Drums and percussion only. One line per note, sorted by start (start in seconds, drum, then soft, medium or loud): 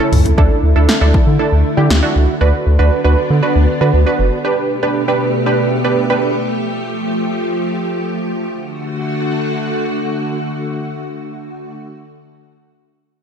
0.13 mid tom medium
0.13 open hi-hat medium
0.25 closed hi-hat medium
0.25 floor tom medium
0.38 kick loud
0.89 snare loud
1.14 kick medium
1.90 snare loud